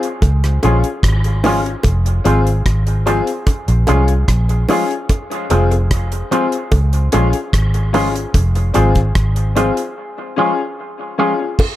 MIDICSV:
0, 0, Header, 1, 5, 480
1, 0, Start_track
1, 0, Tempo, 811908
1, 1091, Time_signature, 4, 2, 24, 8
1, 6953, End_track
2, 0, Start_track
2, 0, Title_t, "Upright piano"
2, 0, Program_c, 0, 0
2, 372, Note_on_c, 0, 61, 81
2, 375, Note_on_c, 0, 65, 76
2, 379, Note_on_c, 0, 68, 89
2, 502, Note_off_c, 0, 61, 0
2, 503, Note_off_c, 0, 65, 0
2, 505, Note_off_c, 0, 68, 0
2, 848, Note_on_c, 0, 61, 78
2, 853, Note_on_c, 0, 65, 74
2, 856, Note_on_c, 0, 68, 91
2, 964, Note_off_c, 0, 68, 0
2, 965, Note_off_c, 0, 65, 0
2, 973, Note_on_c, 0, 68, 24
2, 974, Note_on_c, 0, 65, 22
2, 980, Note_off_c, 0, 61, 0
2, 1020, Note_off_c, 0, 68, 0
2, 1021, Note_off_c, 0, 65, 0
2, 1326, Note_on_c, 0, 60, 86
2, 1327, Note_on_c, 0, 65, 83
2, 1332, Note_on_c, 0, 68, 94
2, 1459, Note_off_c, 0, 60, 0
2, 1460, Note_off_c, 0, 65, 0
2, 1462, Note_off_c, 0, 68, 0
2, 1808, Note_on_c, 0, 60, 84
2, 1809, Note_on_c, 0, 65, 75
2, 1813, Note_on_c, 0, 68, 98
2, 1940, Note_off_c, 0, 60, 0
2, 1941, Note_off_c, 0, 65, 0
2, 1943, Note_off_c, 0, 68, 0
2, 2289, Note_on_c, 0, 61, 84
2, 2290, Note_on_c, 0, 65, 79
2, 2295, Note_on_c, 0, 68, 91
2, 2421, Note_off_c, 0, 61, 0
2, 2421, Note_off_c, 0, 65, 0
2, 2424, Note_off_c, 0, 68, 0
2, 2772, Note_on_c, 0, 61, 82
2, 2775, Note_on_c, 0, 65, 70
2, 2778, Note_on_c, 0, 68, 94
2, 2902, Note_off_c, 0, 61, 0
2, 2904, Note_off_c, 0, 65, 0
2, 2905, Note_off_c, 0, 68, 0
2, 3251, Note_on_c, 0, 60, 88
2, 3256, Note_on_c, 0, 65, 78
2, 3259, Note_on_c, 0, 68, 97
2, 3382, Note_off_c, 0, 60, 0
2, 3385, Note_off_c, 0, 65, 0
2, 3386, Note_off_c, 0, 68, 0
2, 3732, Note_on_c, 0, 60, 87
2, 3735, Note_on_c, 0, 65, 73
2, 3741, Note_on_c, 0, 68, 91
2, 3862, Note_off_c, 0, 60, 0
2, 3864, Note_off_c, 0, 65, 0
2, 3867, Note_off_c, 0, 68, 0
2, 4209, Note_on_c, 0, 61, 86
2, 4212, Note_on_c, 0, 65, 78
2, 4216, Note_on_c, 0, 68, 94
2, 4341, Note_off_c, 0, 61, 0
2, 4343, Note_off_c, 0, 65, 0
2, 4345, Note_off_c, 0, 68, 0
2, 4688, Note_on_c, 0, 61, 82
2, 4690, Note_on_c, 0, 65, 76
2, 4694, Note_on_c, 0, 68, 90
2, 4806, Note_off_c, 0, 68, 0
2, 4807, Note_off_c, 0, 65, 0
2, 4815, Note_on_c, 0, 68, 23
2, 4816, Note_on_c, 0, 65, 20
2, 4821, Note_off_c, 0, 61, 0
2, 4863, Note_off_c, 0, 65, 0
2, 4863, Note_off_c, 0, 68, 0
2, 5165, Note_on_c, 0, 60, 86
2, 5169, Note_on_c, 0, 65, 82
2, 5174, Note_on_c, 0, 68, 97
2, 5299, Note_off_c, 0, 60, 0
2, 5301, Note_off_c, 0, 65, 0
2, 5304, Note_off_c, 0, 68, 0
2, 5648, Note_on_c, 0, 60, 78
2, 5652, Note_on_c, 0, 65, 77
2, 5657, Note_on_c, 0, 68, 87
2, 5781, Note_off_c, 0, 60, 0
2, 5783, Note_off_c, 0, 65, 0
2, 5785, Note_off_c, 0, 68, 0
2, 6127, Note_on_c, 0, 61, 81
2, 6131, Note_on_c, 0, 65, 71
2, 6136, Note_on_c, 0, 68, 92
2, 6260, Note_off_c, 0, 61, 0
2, 6262, Note_off_c, 0, 65, 0
2, 6264, Note_off_c, 0, 68, 0
2, 6609, Note_on_c, 0, 61, 73
2, 6613, Note_on_c, 0, 65, 70
2, 6616, Note_on_c, 0, 68, 88
2, 6731, Note_off_c, 0, 65, 0
2, 6731, Note_off_c, 0, 68, 0
2, 6740, Note_on_c, 0, 65, 22
2, 6740, Note_on_c, 0, 68, 25
2, 6741, Note_off_c, 0, 61, 0
2, 6785, Note_off_c, 0, 65, 0
2, 6785, Note_off_c, 0, 68, 0
2, 6953, End_track
3, 0, Start_track
3, 0, Title_t, "Clean electric guitar"
3, 0, Program_c, 1, 27
3, 379, Note_on_c, 1, 53, 76
3, 383, Note_on_c, 1, 56, 73
3, 383, Note_on_c, 1, 65, 69
3, 384, Note_on_c, 1, 61, 77
3, 453, Note_off_c, 1, 53, 0
3, 455, Note_off_c, 1, 56, 0
3, 455, Note_off_c, 1, 65, 0
3, 456, Note_off_c, 1, 61, 0
3, 861, Note_on_c, 1, 53, 74
3, 861, Note_on_c, 1, 56, 81
3, 863, Note_on_c, 1, 61, 85
3, 864, Note_on_c, 1, 65, 85
3, 934, Note_off_c, 1, 53, 0
3, 935, Note_off_c, 1, 56, 0
3, 936, Note_off_c, 1, 61, 0
3, 936, Note_off_c, 1, 65, 0
3, 1332, Note_on_c, 1, 53, 68
3, 1335, Note_on_c, 1, 56, 71
3, 1338, Note_on_c, 1, 60, 76
3, 1341, Note_on_c, 1, 65, 86
3, 1410, Note_off_c, 1, 53, 0
3, 1412, Note_off_c, 1, 56, 0
3, 1413, Note_off_c, 1, 60, 0
3, 1415, Note_off_c, 1, 65, 0
3, 1811, Note_on_c, 1, 53, 74
3, 1814, Note_on_c, 1, 56, 79
3, 1814, Note_on_c, 1, 60, 95
3, 1816, Note_on_c, 1, 65, 88
3, 1890, Note_off_c, 1, 53, 0
3, 1891, Note_off_c, 1, 56, 0
3, 1891, Note_off_c, 1, 60, 0
3, 1892, Note_off_c, 1, 65, 0
3, 2294, Note_on_c, 1, 56, 88
3, 2296, Note_on_c, 1, 53, 81
3, 2300, Note_on_c, 1, 61, 80
3, 2301, Note_on_c, 1, 65, 88
3, 2372, Note_off_c, 1, 53, 0
3, 2372, Note_off_c, 1, 56, 0
3, 2374, Note_off_c, 1, 61, 0
3, 2375, Note_off_c, 1, 65, 0
3, 2776, Note_on_c, 1, 53, 78
3, 2782, Note_on_c, 1, 56, 82
3, 2783, Note_on_c, 1, 61, 80
3, 2785, Note_on_c, 1, 65, 97
3, 2853, Note_off_c, 1, 53, 0
3, 2855, Note_off_c, 1, 56, 0
3, 2856, Note_off_c, 1, 61, 0
3, 2857, Note_off_c, 1, 65, 0
3, 3255, Note_on_c, 1, 53, 80
3, 3256, Note_on_c, 1, 56, 77
3, 3259, Note_on_c, 1, 60, 79
3, 3262, Note_on_c, 1, 65, 78
3, 3332, Note_off_c, 1, 53, 0
3, 3333, Note_off_c, 1, 56, 0
3, 3334, Note_off_c, 1, 60, 0
3, 3335, Note_off_c, 1, 65, 0
3, 3733, Note_on_c, 1, 53, 76
3, 3733, Note_on_c, 1, 56, 87
3, 3736, Note_on_c, 1, 60, 89
3, 3739, Note_on_c, 1, 65, 81
3, 3811, Note_off_c, 1, 53, 0
3, 3811, Note_off_c, 1, 56, 0
3, 3813, Note_off_c, 1, 60, 0
3, 3815, Note_off_c, 1, 65, 0
3, 4218, Note_on_c, 1, 56, 86
3, 4220, Note_on_c, 1, 53, 76
3, 4222, Note_on_c, 1, 65, 80
3, 4225, Note_on_c, 1, 61, 81
3, 4294, Note_off_c, 1, 56, 0
3, 4295, Note_off_c, 1, 53, 0
3, 4296, Note_off_c, 1, 65, 0
3, 4298, Note_off_c, 1, 61, 0
3, 4693, Note_on_c, 1, 53, 92
3, 4696, Note_on_c, 1, 56, 94
3, 4698, Note_on_c, 1, 61, 90
3, 4699, Note_on_c, 1, 65, 88
3, 4771, Note_off_c, 1, 53, 0
3, 4773, Note_off_c, 1, 56, 0
3, 4774, Note_off_c, 1, 61, 0
3, 4775, Note_off_c, 1, 65, 0
3, 5170, Note_on_c, 1, 53, 74
3, 5172, Note_on_c, 1, 56, 78
3, 5172, Note_on_c, 1, 60, 84
3, 5176, Note_on_c, 1, 65, 80
3, 5250, Note_off_c, 1, 53, 0
3, 5251, Note_off_c, 1, 56, 0
3, 5251, Note_off_c, 1, 60, 0
3, 5253, Note_off_c, 1, 65, 0
3, 5655, Note_on_c, 1, 53, 86
3, 5655, Note_on_c, 1, 56, 82
3, 5658, Note_on_c, 1, 65, 98
3, 5659, Note_on_c, 1, 60, 89
3, 5733, Note_off_c, 1, 53, 0
3, 5733, Note_off_c, 1, 56, 0
3, 5734, Note_off_c, 1, 65, 0
3, 5735, Note_off_c, 1, 60, 0
3, 6135, Note_on_c, 1, 53, 70
3, 6138, Note_on_c, 1, 56, 71
3, 6141, Note_on_c, 1, 65, 71
3, 6143, Note_on_c, 1, 61, 82
3, 6213, Note_off_c, 1, 53, 0
3, 6214, Note_off_c, 1, 56, 0
3, 6216, Note_off_c, 1, 61, 0
3, 6216, Note_off_c, 1, 65, 0
3, 6613, Note_on_c, 1, 56, 83
3, 6616, Note_on_c, 1, 53, 80
3, 6617, Note_on_c, 1, 65, 90
3, 6620, Note_on_c, 1, 61, 79
3, 6692, Note_off_c, 1, 56, 0
3, 6693, Note_off_c, 1, 53, 0
3, 6694, Note_off_c, 1, 65, 0
3, 6695, Note_off_c, 1, 61, 0
3, 6953, End_track
4, 0, Start_track
4, 0, Title_t, "Fingered electric bass"
4, 0, Program_c, 2, 33
4, 134, Note_on_c, 2, 37, 98
4, 342, Note_off_c, 2, 37, 0
4, 378, Note_on_c, 2, 34, 72
4, 484, Note_off_c, 2, 34, 0
4, 613, Note_on_c, 2, 32, 72
4, 1032, Note_off_c, 2, 32, 0
4, 1095, Note_on_c, 2, 29, 92
4, 1303, Note_off_c, 2, 29, 0
4, 1333, Note_on_c, 2, 32, 97
4, 1542, Note_off_c, 2, 32, 0
4, 1575, Note_on_c, 2, 32, 92
4, 1893, Note_off_c, 2, 32, 0
4, 2177, Note_on_c, 2, 34, 92
4, 2278, Note_off_c, 2, 34, 0
4, 2299, Note_on_c, 2, 36, 86
4, 2506, Note_off_c, 2, 36, 0
4, 2536, Note_on_c, 2, 34, 84
4, 2744, Note_off_c, 2, 34, 0
4, 3259, Note_on_c, 2, 29, 101
4, 3676, Note_off_c, 2, 29, 0
4, 3976, Note_on_c, 2, 37, 89
4, 4185, Note_off_c, 2, 37, 0
4, 4221, Note_on_c, 2, 34, 68
4, 4327, Note_off_c, 2, 34, 0
4, 4457, Note_on_c, 2, 32, 80
4, 4875, Note_off_c, 2, 32, 0
4, 4935, Note_on_c, 2, 29, 91
4, 5144, Note_off_c, 2, 29, 0
4, 5180, Note_on_c, 2, 32, 90
4, 5386, Note_off_c, 2, 32, 0
4, 5415, Note_on_c, 2, 32, 87
4, 5733, Note_off_c, 2, 32, 0
4, 6953, End_track
5, 0, Start_track
5, 0, Title_t, "Drums"
5, 17, Note_on_c, 9, 42, 50
5, 76, Note_off_c, 9, 42, 0
5, 130, Note_on_c, 9, 60, 67
5, 131, Note_on_c, 9, 36, 105
5, 134, Note_on_c, 9, 42, 71
5, 189, Note_off_c, 9, 60, 0
5, 190, Note_off_c, 9, 36, 0
5, 193, Note_off_c, 9, 42, 0
5, 259, Note_on_c, 9, 42, 47
5, 260, Note_on_c, 9, 37, 60
5, 318, Note_off_c, 9, 42, 0
5, 319, Note_off_c, 9, 37, 0
5, 371, Note_on_c, 9, 60, 68
5, 373, Note_on_c, 9, 42, 70
5, 430, Note_off_c, 9, 60, 0
5, 432, Note_off_c, 9, 42, 0
5, 495, Note_on_c, 9, 42, 49
5, 554, Note_off_c, 9, 42, 0
5, 610, Note_on_c, 9, 36, 97
5, 615, Note_on_c, 9, 37, 101
5, 615, Note_on_c, 9, 42, 85
5, 669, Note_off_c, 9, 36, 0
5, 674, Note_off_c, 9, 37, 0
5, 674, Note_off_c, 9, 42, 0
5, 734, Note_on_c, 9, 42, 42
5, 794, Note_off_c, 9, 42, 0
5, 850, Note_on_c, 9, 61, 77
5, 855, Note_on_c, 9, 46, 66
5, 909, Note_off_c, 9, 61, 0
5, 914, Note_off_c, 9, 46, 0
5, 982, Note_on_c, 9, 42, 44
5, 1041, Note_off_c, 9, 42, 0
5, 1084, Note_on_c, 9, 60, 64
5, 1090, Note_on_c, 9, 36, 102
5, 1090, Note_on_c, 9, 42, 83
5, 1143, Note_off_c, 9, 60, 0
5, 1149, Note_off_c, 9, 36, 0
5, 1150, Note_off_c, 9, 42, 0
5, 1218, Note_on_c, 9, 42, 45
5, 1277, Note_off_c, 9, 42, 0
5, 1332, Note_on_c, 9, 42, 73
5, 1391, Note_off_c, 9, 42, 0
5, 1459, Note_on_c, 9, 42, 47
5, 1518, Note_off_c, 9, 42, 0
5, 1571, Note_on_c, 9, 36, 99
5, 1573, Note_on_c, 9, 37, 106
5, 1574, Note_on_c, 9, 42, 76
5, 1630, Note_off_c, 9, 36, 0
5, 1632, Note_off_c, 9, 37, 0
5, 1633, Note_off_c, 9, 42, 0
5, 1695, Note_on_c, 9, 42, 51
5, 1754, Note_off_c, 9, 42, 0
5, 1813, Note_on_c, 9, 42, 57
5, 1873, Note_off_c, 9, 42, 0
5, 1934, Note_on_c, 9, 42, 49
5, 1994, Note_off_c, 9, 42, 0
5, 2049, Note_on_c, 9, 60, 69
5, 2050, Note_on_c, 9, 36, 99
5, 2051, Note_on_c, 9, 42, 70
5, 2108, Note_off_c, 9, 60, 0
5, 2109, Note_off_c, 9, 36, 0
5, 2110, Note_off_c, 9, 42, 0
5, 2176, Note_on_c, 9, 42, 49
5, 2235, Note_off_c, 9, 42, 0
5, 2288, Note_on_c, 9, 60, 62
5, 2292, Note_on_c, 9, 42, 74
5, 2347, Note_off_c, 9, 60, 0
5, 2351, Note_off_c, 9, 42, 0
5, 2412, Note_on_c, 9, 42, 48
5, 2471, Note_off_c, 9, 42, 0
5, 2531, Note_on_c, 9, 36, 85
5, 2533, Note_on_c, 9, 37, 97
5, 2533, Note_on_c, 9, 42, 96
5, 2590, Note_off_c, 9, 36, 0
5, 2592, Note_off_c, 9, 37, 0
5, 2592, Note_off_c, 9, 42, 0
5, 2656, Note_on_c, 9, 42, 40
5, 2715, Note_off_c, 9, 42, 0
5, 2770, Note_on_c, 9, 61, 73
5, 2775, Note_on_c, 9, 46, 70
5, 2829, Note_off_c, 9, 61, 0
5, 2834, Note_off_c, 9, 46, 0
5, 2901, Note_on_c, 9, 42, 43
5, 2960, Note_off_c, 9, 42, 0
5, 3012, Note_on_c, 9, 36, 108
5, 3012, Note_on_c, 9, 42, 88
5, 3012, Note_on_c, 9, 60, 66
5, 3071, Note_off_c, 9, 36, 0
5, 3071, Note_off_c, 9, 42, 0
5, 3071, Note_off_c, 9, 60, 0
5, 3142, Note_on_c, 9, 42, 42
5, 3201, Note_off_c, 9, 42, 0
5, 3253, Note_on_c, 9, 42, 72
5, 3312, Note_off_c, 9, 42, 0
5, 3378, Note_on_c, 9, 42, 47
5, 3438, Note_off_c, 9, 42, 0
5, 3493, Note_on_c, 9, 36, 99
5, 3494, Note_on_c, 9, 37, 109
5, 3494, Note_on_c, 9, 42, 84
5, 3552, Note_off_c, 9, 36, 0
5, 3553, Note_off_c, 9, 37, 0
5, 3554, Note_off_c, 9, 42, 0
5, 3617, Note_on_c, 9, 42, 54
5, 3676, Note_off_c, 9, 42, 0
5, 3736, Note_on_c, 9, 42, 58
5, 3795, Note_off_c, 9, 42, 0
5, 3856, Note_on_c, 9, 42, 50
5, 3915, Note_off_c, 9, 42, 0
5, 3971, Note_on_c, 9, 60, 72
5, 3972, Note_on_c, 9, 36, 101
5, 3972, Note_on_c, 9, 42, 68
5, 4030, Note_off_c, 9, 60, 0
5, 4031, Note_off_c, 9, 36, 0
5, 4032, Note_off_c, 9, 42, 0
5, 4096, Note_on_c, 9, 42, 46
5, 4155, Note_off_c, 9, 42, 0
5, 4210, Note_on_c, 9, 42, 77
5, 4214, Note_on_c, 9, 60, 70
5, 4269, Note_off_c, 9, 42, 0
5, 4273, Note_off_c, 9, 60, 0
5, 4334, Note_on_c, 9, 42, 52
5, 4393, Note_off_c, 9, 42, 0
5, 4453, Note_on_c, 9, 36, 95
5, 4457, Note_on_c, 9, 37, 105
5, 4457, Note_on_c, 9, 42, 89
5, 4512, Note_off_c, 9, 36, 0
5, 4516, Note_off_c, 9, 37, 0
5, 4516, Note_off_c, 9, 42, 0
5, 4576, Note_on_c, 9, 42, 41
5, 4635, Note_off_c, 9, 42, 0
5, 4694, Note_on_c, 9, 46, 68
5, 4695, Note_on_c, 9, 61, 72
5, 4753, Note_off_c, 9, 46, 0
5, 4755, Note_off_c, 9, 61, 0
5, 4822, Note_on_c, 9, 42, 45
5, 4881, Note_off_c, 9, 42, 0
5, 4932, Note_on_c, 9, 36, 103
5, 4933, Note_on_c, 9, 42, 86
5, 4934, Note_on_c, 9, 60, 61
5, 4991, Note_off_c, 9, 36, 0
5, 4992, Note_off_c, 9, 42, 0
5, 4993, Note_off_c, 9, 60, 0
5, 5057, Note_on_c, 9, 42, 42
5, 5116, Note_off_c, 9, 42, 0
5, 5169, Note_on_c, 9, 42, 72
5, 5228, Note_off_c, 9, 42, 0
5, 5293, Note_on_c, 9, 42, 44
5, 5295, Note_on_c, 9, 36, 83
5, 5352, Note_off_c, 9, 42, 0
5, 5354, Note_off_c, 9, 36, 0
5, 5412, Note_on_c, 9, 36, 109
5, 5412, Note_on_c, 9, 37, 108
5, 5412, Note_on_c, 9, 42, 76
5, 5471, Note_off_c, 9, 36, 0
5, 5471, Note_off_c, 9, 37, 0
5, 5471, Note_off_c, 9, 42, 0
5, 5534, Note_on_c, 9, 42, 51
5, 5593, Note_off_c, 9, 42, 0
5, 5655, Note_on_c, 9, 42, 59
5, 5655, Note_on_c, 9, 61, 61
5, 5714, Note_off_c, 9, 42, 0
5, 5714, Note_off_c, 9, 61, 0
5, 5776, Note_on_c, 9, 42, 51
5, 5836, Note_off_c, 9, 42, 0
5, 6851, Note_on_c, 9, 36, 112
5, 6851, Note_on_c, 9, 49, 98
5, 6855, Note_on_c, 9, 60, 64
5, 6910, Note_off_c, 9, 36, 0
5, 6910, Note_off_c, 9, 49, 0
5, 6914, Note_off_c, 9, 60, 0
5, 6953, End_track
0, 0, End_of_file